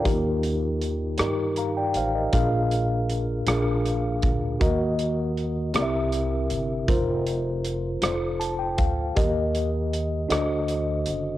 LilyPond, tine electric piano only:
<<
  \new Staff \with { instrumentName = "Tine electric piano" } { \time 6/8 \key ees \lydian \tempo 4. = 53 << { f'16 r4. r16 <f'' bes''>16 <d'' g''>16 <c'' f''>16 <bes' ees''>16~ | <bes' ees''>16 r2 r8. | r2. | r2 a''16 g''16 f''8 |
r2. | } \\ { <ees' g' bes'>4 r8 <ees' g' bes'>4 r8 | <d' f' aes' bes' f''>4 r8 <d' f' aes' bes' f''>4 r8 | <ges' bes' ees''>4 r8 <c' e' g' bes' d'' e''>4 r8 | <f' bes' c''>4 r8 <f' a' c''>4 r8 |
<g' bes' ees''>4 r8 <d' fis' a' c'' ees''>4 r8 | } >> }
  \new Staff \with { instrumentName = "Tine electric piano" } { \clef bass \time 6/8 \key ees \lydian ees4. r4. | bes,4. bes,4. | ees4. c4. | r2. |
ees4. d4. | }
>>